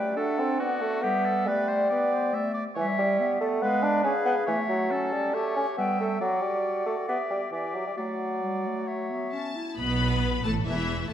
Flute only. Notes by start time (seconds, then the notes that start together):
Already playing: G5
0.18 F#5
0.62 F#5
1.04 E5
1.48 D5
1.92 B4
2.13 C5
2.35 D5
2.79 E5
3.20 E5
3.41 D5
3.63 F5
4.06 F5
4.49 E5
4.92 A5
5.78 G5
6.21 F#5
7.09 E5
7.53 E5
7.98 F#5
8.88 E5